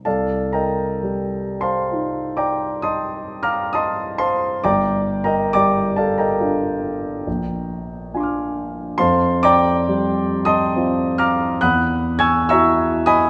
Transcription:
\new Staff \with { instrumentName = "Grand piano" } { \time 5/4 \key c \dorian \tempo 4 = 68 << { <a' d'' f'' a''>8 <bes' ees'' g'' bes''>8~ \tuplet 3/2 { <bes' ees'' g'' bes''>4 <c'' f'' a'' c'''>8~ } <c'' f'' a'' c'''>8 <d'' g'' bes'' d'''>8 \tuplet 3/2 { <ees'' a'' c''' ees'''>4 <f'' bes'' d''' f'''>8 } <ees'' a'' c''' ees'''>8 <c'' f'' a'' c'''>8 | \tuplet 3/2 { <d'' g'' bes'' d'''>4 <bes' ees'' g'' bes''>8 } <d'' g'' bes'' d'''>8 <a' d'' f'' a''>16 <bes' ees'' g'' bes''>2~ <bes' ees'' g'' bes''>8. r8 | <c'' f'' a'' c'''>8 <d'' g'' bes'' d'''>8~ \tuplet 3/2 { <d'' g'' bes'' d'''>4 <ees'' a'' c''' ees'''>8~ } <ees'' a'' c''' ees'''>8 <f'' bes'' d''' f'''>8 \tuplet 3/2 { <fis'' b'' ees''' fis'''>4 <gis'' des''' e''' gis'''>8 <e'' bes'' des''' e'''>4 <ees'' gis'' b'' ees'''>8 } | } \\ { c,4 g4 <ees' f'>2. | g,,4 g4 <d' f'>4 bes,,4 <d' f' aes'' c''' d''' f'''>4 | f,4 g4 <c' f'>4 e,4 <e' fis'>4 | } >> }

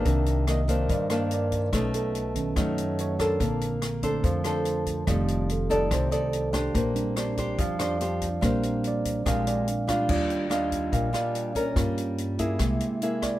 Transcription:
<<
  \new Staff \with { instrumentName = "Tine electric piano" } { \time 4/4 \key bes \major \tempo 4 = 144 r4 ees''8 c''8 d''8 bes'8 d''8 r8 | b'8 a'4 r4. cis''8 bes'8~ | bes'8 r4. c''8 a'4 r8 | g'4 a'4 c''8 a'4. |
c''4 d''4 f''8 d''4. | c''4 d''4 f''8 d''4. | \key ees \major d''4 ees''4 f''8 d''4. | r2. r8 d''8 | }
  \new Staff \with { instrumentName = "Tine electric piano" } { \time 4/4 \key bes \major <ees bes d'>8 r2. r8 | r4. <dis a cis'>8 r2 | <d c'>4. <d a c'>8 r2 | <ees g a>4. r2 r8 |
r8 <g c' d'>4. r2 | <g c' d'>2 <aes c' d'>8 r4. | \key ees \major <g d' f'>8 r2. r8 | <bes des' f'>4. r8 <gis bes e'>2 | }
  \new Staff \with { instrumentName = "Nylon-string guitar" } { \time 4/4 \key bes \major << { <ees bes d'>4 <ees bes d'>8 <ees bes d'>4 <ees bes d'>4. | <a cis' dis'>2 <a cis' dis'>4. <d' a' c''>8~ | <d' a' c''>4 r8 <d' a' c''>4 <d' a' c''>4. | <ees' a' d''>4 r8 <ees' a' d''>4 <ees' a' d''>4 <d' g' c''>8~ |
<d' g' c''>4 <d' g' c''>8 <d' g' c''>4 <d' g' c''>8 <d' g' c''>8 r8 | <d' g' c''>2 <aes d' g'>4 r8 <g d' f'>8~ | \key ees \major <g d' f'>4 <g d' f'>4. <g d' f'>4 <des' f' bes'>8~ | <des' f' bes'>4. <bes fes' aes'>4. <bes e' gis'>4 | } \\ { c2 g,2 | b,2 fis2 | bes2 f2 | f2 c2 |
bes2 f2 | bes2 bes,2 | ees2 bes,2 | g2 c2 | } >> }
  \new Staff \with { instrumentName = "Upright bass" } { \clef bass \time 4/4 \key bes \major c,2 g,2 | b,,2 fis,2 | bes,,2 f,2 | f,,2 c,2 |
bes,,2 f,2 | bes,,2 bes,,2 | \key ees \major ees,2 bes,,8 r4. | g,2 c,8 r4. | }
  \new DrumStaff \with { instrumentName = "Drums" } \drummode { \time 4/4 <hh bd>8 hh8 <hh ss>8 <hh bd>8 <hh bd>8 <hh ss>8 hh8 <hh bd>8 | <hh bd ss>8 hh8 hh8 <hh bd>8 <hh bd ss>8 hh8 hh8 <hh bd ss>8 | <hh bd>8 hh8 <hh ss>8 <hh bd>8 <hh bd>8 <hh ss>8 hh8 <hh bd>8 | <hh bd ss>8 hh8 hh8 <hh bd>8 <hh bd ss>8 hh8 hh8 <hh bd ss>8 |
<hh bd>8 hh8 <hh ss>8 <hh bd>8 <hh bd>8 <hh ss>8 hh8 <hh bd>8 | <hh bd ss>8 hh8 hh8 <hh bd>8 <hh bd ss>8 hh8 hh8 <hh bd ss>8 | <cymc bd>8 hh8 <hh ss>8 <hh bd>8 <hh bd>8 <hh ss>8 hh8 <hh bd>8 | <hh bd ss>8 hh8 hh8 <hh bd>8 <hh bd ss>8 hh8 hh8 <hh bd ss>8 | }
>>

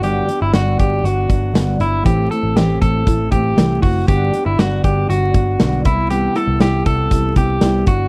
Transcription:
<<
  \new Staff \with { instrumentName = "Clean electric guitar" } { \time 4/4 \key g \major \tempo 4 = 119 g'8. e'16 fis'8 g'8 fis'4. e'8 | g'8 a'8 g'8 a'4 g'4 fis'8 | g'8. e'16 fis'8 g'8 fis'4. e'8 | g'8 a'8 g'8 a'4 g'4 fis'8 | }
  \new Staff \with { instrumentName = "Steel-string acoustic guitar" } { \time 4/4 \key g \major <g, d fis b d'>8 <fis b d'>8 <g, d fis b d'>4 <d fis b d'>8 <fis b d'>8 <g, d fis b d'>8 <fis b d'>8 | <a, e a c' e'>8 <a c' e'>8 <a, e a c' e'>4 <e a c' e'>8 <a c' e'>8 <a, e a c' e'>8 <a c' e'>8 | <g, d fis b d'>8 <fis b d'>8 <g, d fis b d'>4 <d fis b d'>8 <fis b d'>8 <g, d fis b d'>8 <g b e'>8 | <c g b e'>8 <g b e'>8 <c g b e'>4 <c g b e'>8 <g b e'>8 <c g b e'>8 <fis b d'>8 | }
  \new Staff \with { instrumentName = "Picked electric bass" } { \clef bass \time 4/4 \key g \major g,,8 r16 g,,16 g,,8 g,,8 g,,8 g,,8 g,,8 g,,8 | a,,8 r16 a,,16 a,,8 a,,8 a,,8 a,,8 c,8 fis,,8 | g,,8 r16 g,,16 g,,8 g,,8 g,,8 g,,8 b,,8 c,8~ | c,8 r16 c,16 c,8 c,8 c,8 c,8 c,8 g,,8 | }
  \new DrumStaff \with { instrumentName = "Drums" } \drummode { \time 4/4 hh8 hh8 <hh sn>8 <hh bd>8 hh8 <hh bd>8 <hh sn>8 hh8 | <hh bd>8 hh8 <hh sn>8 <hh bd>8 <hh bd>8 <hh bd>8 <hh sn>8 <hho bd>8 | <hh bd>8 hh8 <hh sn>8 <hh bd>8 hh8 <hh bd>8 <hh sn>8 <hh bd>8 | hh8 hh8 <hh sn>8 <hh bd>8 <hh bd>8 <hh bd>8 <hh sn>8 <hh bd>8 | }
>>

